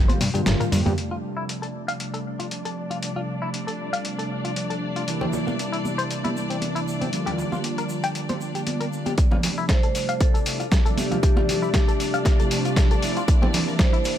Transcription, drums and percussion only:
0.09 closed hi-hat, high conga, shaker
0.21 open hi-hat, high tom, shaker
0.35 closed hi-hat, shaker
0.46 snare, closed hi-hat, mid tom, high conga, shaker
0.61 closed hi-hat, mid tom, shaker
0.72 mid tom, open hi-hat, shaker
0.86 mid tom, high conga, shaker
0.98 closed hi-hat
1.49 closed hi-hat
1.63 closed hi-hat
1.89 closed hi-hat
2.00 closed hi-hat
2.14 closed hi-hat
2.40 closed hi-hat
2.51 closed hi-hat
2.65 closed hi-hat
2.91 closed hi-hat
3.03 closed hi-hat
3.54 closed hi-hat
3.68 closed hi-hat
3.94 closed hi-hat
4.05 closed hi-hat
4.19 closed hi-hat
4.45 closed hi-hat
4.56 closed hi-hat
4.70 closed hi-hat
4.96 closed hi-hat
5.08 closed hi-hat, shaker
5.21 low conga
5.33 low conga, shaker
5.47 high conga, shaker
5.59 closed hi-hat, shaker
5.74 closed hi-hat
5.85 high conga, shaker
5.99 closed hi-hat, shaker
6.11 closed hi-hat, shaker
6.24 closed hi-hat, high conga, shaker
6.37 shaker
6.50 closed hi-hat, shaker
6.61 closed hi-hat, high conga, shaker
6.76 closed hi-hat, shaker
6.88 shaker
7.02 closed hi-hat, high conga, shaker
7.13 closed hi-hat, shaker
7.27 closed hi-hat, low conga
7.38 low conga, shaker
7.52 high conga, shaker
7.64 closed hi-hat, shaker
7.78 closed hi-hat, shaker
7.89 shaker
8.04 closed hi-hat, shaker
8.15 closed hi-hat, shaker
8.29 closed hi-hat, high conga, shaker
8.41 shaker
8.55 closed hi-hat, shaker
8.67 closed hi-hat, high conga, shaker
8.81 closed hi-hat, shaker
8.93 shaker
9.06 closed hi-hat, high conga, shaker
9.18 kick, closed hi-hat, shaker
9.31 high conga, low conga
9.43 open hi-hat, low conga, shaker
9.57 shaker
9.69 kick, snare, closed hi-hat, shaker
9.83 closed hi-hat
9.95 open hi-hat, shaker
10.09 closed hi-hat, shaker
10.21 kick, closed hi-hat, shaker
10.35 closed hi-hat, shaker
10.46 open hi-hat, shaker
10.60 closed hi-hat, shaker
10.72 kick, snare, closed hi-hat, shaker
10.86 closed hi-hat, shaker
10.98 open hi-hat, high conga, shaker
11.12 closed hi-hat, high conga, low conga, shaker
11.23 kick, closed hi-hat, shaker
11.37 high conga, low conga
11.49 open hi-hat, low conga, shaker
11.62 shaker
11.74 kick, snare, closed hi-hat, shaker
11.88 closed hi-hat, shaker
12.00 open hi-hat, shaker
12.14 closed hi-hat, shaker
12.25 kick, snare, closed hi-hat, shaker
12.40 closed hi-hat, shaker
12.51 open hi-hat, shaker
12.65 closed hi-hat, shaker
12.76 kick, snare, closed hi-hat, shaker
12.91 closed hi-hat, shaker
13.02 open hi-hat, shaker
13.17 closed hi-hat, shaker
13.28 kick, closed hi-hat, shaker
13.43 high conga, low conga
13.54 open hi-hat, low conga, shaker
13.68 shaker
13.79 kick, snare, closed hi-hat, shaker
13.94 closed hi-hat
14.05 open hi-hat, shaker

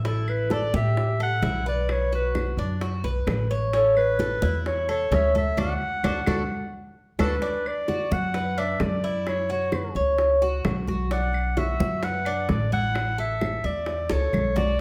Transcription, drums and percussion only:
0.05 high bongo, high conga
0.28 high conga, claves
0.50 high bongo, high conga
0.74 high conga
0.97 high bongo, high conga
1.19 high conga, claves
1.42 high bongo, low bongo, high conga
1.89 high bongo, high conga, claves
2.12 high bongo, high conga
2.35 high bongo, high conga, claves
2.58 high bongo, high conga
2.81 high bongo, high conga
3.04 high bongo, high conga
3.27 high bongo, low bongo, high conga, claves
3.73 high bongo, high conga
3.97 high conga, claves
4.19 high bongo, high conga
4.42 high conga
4.66 high bongo, high conga
4.89 high conga, claves
5.12 high bongo, low bongo, high conga
5.35 high conga
5.58 high bongo, high conga, claves
6.04 high bongo, high conga, claves
6.26 high bongo, high conga, claves
7.19 high bongo, high conga, claves
7.42 high bongo, high conga
7.66 high conga, claves
7.88 high bongo, high conga
8.12 high conga
8.34 high bongo, high conga
8.58 high conga, claves
8.80 high bongo, low bongo, high conga
9.27 high bongo, high conga, claves
9.49 high bongo, high conga
9.72 high bongo, high conga, claves
9.95 high bongo, high conga
10.18 high bongo, high conga
10.42 high bongo, high conga
10.65 high bongo, low bongo, high conga, claves
10.88 high conga
11.11 high bongo, high conga
11.33 high conga, claves
11.57 high bongo, high conga
11.80 high conga
12.03 high bongo, high conga
12.25 high conga, claves
12.49 high bongo, low bongo, high conga
12.73 high conga
12.95 high bongo, high conga, claves
13.18 high bongo, high conga
13.41 high bongo, high conga, claves
13.64 high bongo, high conga
13.86 high bongo, high conga
14.09 high bongo, high conga
14.33 low bongo, high conga, claves
14.56 low bongo, high conga

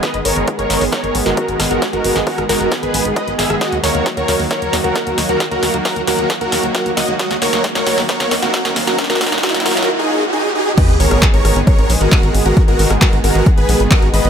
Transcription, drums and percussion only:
0.03 kick, snare, closed hi-hat
0.14 closed hi-hat
0.25 open hi-hat
0.36 closed hi-hat
0.48 kick, closed hi-hat
0.59 closed hi-hat
0.70 snare, open hi-hat
0.81 open hi-hat
0.92 kick, snare, closed hi-hat
1.04 closed hi-hat
1.15 open hi-hat
1.26 snare, closed hi-hat
1.37 kick, closed hi-hat
1.48 closed hi-hat
1.60 cross-stick, snare, open hi-hat
1.71 closed hi-hat
1.82 kick, snare, closed hi-hat
1.93 closed hi-hat
2.04 open hi-hat
2.16 snare, closed hi-hat
2.27 kick, open hi-hat
2.38 cross-stick, closed hi-hat
2.49 snare, open hi-hat
2.61 closed hi-hat
2.72 kick, snare, closed hi-hat
2.83 closed hi-hat
2.94 open hi-hat
3.05 closed hi-hat
3.16 kick, closed hi-hat
3.28 closed hi-hat
3.39 snare, open hi-hat
3.50 cross-stick, closed hi-hat
3.61 kick, snare, closed hi-hat
3.72 closed hi-hat
3.84 snare, open hi-hat
4.06 kick, snare, closed hi-hat
4.17 closed hi-hat
4.28 snare, open hi-hat
4.40 open hi-hat
4.51 kick, snare, closed hi-hat
4.62 closed hi-hat
4.73 snare, open hi-hat
4.84 closed hi-hat
4.95 kick, snare, closed hi-hat
5.07 closed hi-hat
5.18 snare, open hi-hat
5.29 closed hi-hat
5.40 kick, snare, closed hi-hat
5.51 closed hi-hat
5.63 snare, open hi-hat
5.74 closed hi-hat
5.85 kick, snare, open hi-hat
5.96 closed hi-hat
6.07 snare, open hi-hat
6.19 closed hi-hat
6.30 kick, snare, closed hi-hat
6.41 closed hi-hat
6.52 snare, open hi-hat
6.63 closed hi-hat
6.75 kick, snare, closed hi-hat
6.86 closed hi-hat
6.97 snare, open hi-hat
7.08 closed hi-hat
7.19 kick, snare, closed hi-hat
7.31 snare, closed hi-hat
7.42 snare, open hi-hat
7.53 snare, closed hi-hat
7.64 kick, snare, closed hi-hat
7.75 snare, closed hi-hat
7.87 snare, open hi-hat
7.98 snare, open hi-hat
8.09 kick, snare, closed hi-hat
8.20 snare, closed hi-hat
8.31 snare, open hi-hat
8.43 snare, closed hi-hat
8.54 kick, snare, closed hi-hat
8.65 snare, closed hi-hat
8.76 snare, open hi-hat
8.87 snare, closed hi-hat
8.98 kick, snare, closed hi-hat
9.04 snare
9.10 snare, closed hi-hat
9.15 snare
9.21 kick, snare, open hi-hat
9.27 snare
9.32 snare, closed hi-hat
9.38 snare
9.43 kick, snare, open hi-hat
9.49 snare
9.55 snare, closed hi-hat
9.60 snare
9.66 snare, open hi-hat
9.71 snare
9.77 snare, closed hi-hat
9.83 snare
10.78 kick, closed hi-hat, crash
10.89 closed hi-hat
11.00 open hi-hat
11.11 cross-stick, closed hi-hat
11.22 kick, clap, closed hi-hat
11.34 closed hi-hat
11.45 cross-stick, open hi-hat
11.56 closed hi-hat
11.67 kick, closed hi-hat
11.79 closed hi-hat
11.90 open hi-hat
12.01 closed hi-hat
12.12 kick, clap, closed hi-hat
12.23 closed hi-hat
12.35 open hi-hat
12.46 closed hi-hat
12.57 kick, closed hi-hat
12.68 closed hi-hat
12.79 open hi-hat
12.90 cross-stick, closed hi-hat
13.02 kick, clap, closed hi-hat
13.13 closed hi-hat
13.24 open hi-hat
13.35 closed hi-hat
13.46 kick, closed hi-hat
13.58 closed hi-hat
13.69 open hi-hat
13.80 closed hi-hat
13.91 kick, clap, closed hi-hat
14.02 closed hi-hat
14.14 open hi-hat
14.25 closed hi-hat

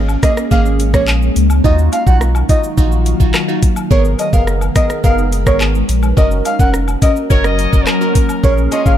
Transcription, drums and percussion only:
0.09 high woodblock, shaker
0.23 kick, cross-stick, closed hi-hat, cabasa, shaker
0.37 cross-stick, shaker
0.51 kick, shaker
0.66 shaker
0.80 closed hi-hat, cabasa, shaker
0.94 kick, cross-stick, shaker
1.08 clap, high woodblock, shaker
1.22 shaker
1.36 closed hi-hat, cabasa, shaker
1.50 high woodblock, shaker
1.64 kick, shaker
1.79 shaker
1.92 closed hi-hat, cabasa, high woodblock, shaker
2.07 kick, shaker
2.21 cross-stick, shaker
2.35 high woodblock, shaker
2.49 kick, closed hi-hat, cabasa, shaker
2.64 shaker
2.78 kick, shaker
2.92 shaker
3.06 closed hi-hat, cabasa, shaker
3.20 kick, shaker
3.34 cross-stick, clap, high woodblock, shaker
3.49 shaker
3.63 kick, closed hi-hat, cabasa, shaker
3.76 high woodblock, shaker
3.91 kick, shaker
4.05 shaker
4.19 closed hi-hat, cabasa, high woodblock, shaker
4.33 kick, shaker
4.47 cross-stick, shaker
4.61 high woodblock, shaker
4.76 kick, cross-stick, closed hi-hat, cabasa, shaker
4.90 cross-stick, shaker
5.04 kick, shaker
5.18 shaker
5.32 closed hi-hat, cabasa, shaker
5.47 kick, cross-stick, shaker
5.60 clap, high woodblock, shaker
5.75 shaker
5.89 closed hi-hat, cabasa, shaker
6.03 high woodblock, shaker
6.17 kick, shaker
6.31 shaker
6.45 closed hi-hat, cabasa, high woodblock, shaker
6.59 kick, shaker
6.74 cross-stick, shaker
6.88 high woodblock, shaker
7.02 kick, closed hi-hat, cabasa, shaker
7.16 shaker
7.30 kick, shaker
7.44 cross-stick, shaker
7.59 closed hi-hat, cabasa, shaker
7.73 kick, shaker
7.87 cross-stick, clap, high woodblock, shaker
8.01 shaker
8.15 kick, closed hi-hat, cabasa, shaker
8.29 high woodblock, shaker
8.44 kick, shaker
8.58 shaker
8.72 closed hi-hat, cabasa, high woodblock, shaker
8.86 kick, shaker

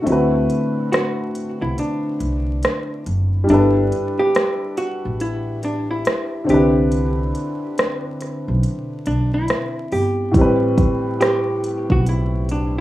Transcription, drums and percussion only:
0.07 closed hi-hat
0.50 closed hi-hat
0.93 cross-stick, closed hi-hat
1.35 closed hi-hat
1.78 closed hi-hat
2.20 closed hi-hat
2.63 cross-stick, closed hi-hat
3.06 closed hi-hat
3.49 closed hi-hat
3.92 closed hi-hat
4.35 cross-stick, closed hi-hat
4.77 closed hi-hat
5.20 closed hi-hat
5.63 closed hi-hat
6.05 cross-stick, closed hi-hat
6.49 closed hi-hat
6.92 closed hi-hat
7.35 closed hi-hat
7.78 cross-stick, closed hi-hat
8.21 cross-stick, closed hi-hat
8.63 closed hi-hat
9.06 closed hi-hat
9.48 cross-stick, closed hi-hat
9.92 open hi-hat
10.34 kick, closed hi-hat
10.78 kick, closed hi-hat
11.21 cross-stick, closed hi-hat
11.64 closed hi-hat
11.90 kick
12.06 closed hi-hat
12.49 closed hi-hat

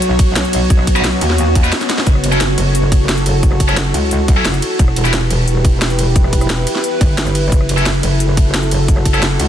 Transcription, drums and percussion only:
0.02 closed hi-hat
0.19 kick, closed hi-hat, ride
0.36 snare, closed hi-hat
0.45 closed hi-hat
0.53 closed hi-hat, ride
0.70 kick, closed hi-hat
0.79 cross-stick
0.87 kick, closed hi-hat, ride
0.96 cross-stick, closed hi-hat
1.04 snare, closed hi-hat
1.21 closed hi-hat, ride
1.30 snare
1.38 closed hi-hat
1.55 kick, closed hi-hat, ride
1.64 closed hi-hat
1.72 snare, closed hi-hat
1.81 snare, closed hi-hat
1.90 snare, closed hi-hat, ride
1.98 snare
2.07 kick, closed hi-hat
2.15 cross-stick
2.24 closed hi-hat, ride
2.32 closed hi-hat
2.41 snare, closed hi-hat
2.58 closed hi-hat, ride
2.75 closed hi-hat
2.92 kick, closed hi-hat, ride
3.09 snare, closed hi-hat
3.17 closed hi-hat
3.26 closed hi-hat, ride
3.43 kick, closed hi-hat
3.52 cross-stick
3.60 kick, closed hi-hat, ride
3.69 cross-stick, closed hi-hat
3.77 snare, closed hi-hat
3.94 closed hi-hat, ride
4.11 closed hi-hat
4.28 kick, closed hi-hat, ride
4.45 snare, closed hi-hat
4.54 cross-stick, closed hi-hat
4.62 closed hi-hat, ride
4.79 kick, closed hi-hat
4.88 cross-stick
4.96 closed hi-hat, ride
5.05 closed hi-hat
5.13 snare, closed hi-hat
5.31 closed hi-hat, ride
5.48 closed hi-hat
5.65 kick, closed hi-hat, ride
5.82 snare, closed hi-hat
5.90 closed hi-hat
5.99 closed hi-hat, ride
6.16 kick, closed hi-hat
6.24 cross-stick
6.33 kick, closed hi-hat, ride
6.41 cross-stick, closed hi-hat
6.50 snare, closed hi-hat
6.67 closed hi-hat, ride
6.75 snare
6.84 closed hi-hat
7.01 kick, closed hi-hat, ride
7.18 snare, closed hi-hat
7.27 cross-stick, closed hi-hat
7.35 closed hi-hat, ride
7.52 kick, closed hi-hat
7.61 cross-stick
7.69 closed hi-hat, ride
7.78 closed hi-hat
7.86 snare, closed hi-hat
8.03 closed hi-hat, ride
8.20 closed hi-hat
8.37 kick, closed hi-hat, ride
8.54 snare, closed hi-hat
8.63 closed hi-hat
8.71 closed hi-hat, ride
8.88 kick, closed hi-hat
8.97 cross-stick
9.05 kick, closed hi-hat, ride
9.14 cross-stick, closed hi-hat
9.23 snare, closed hi-hat
9.40 closed hi-hat, ride

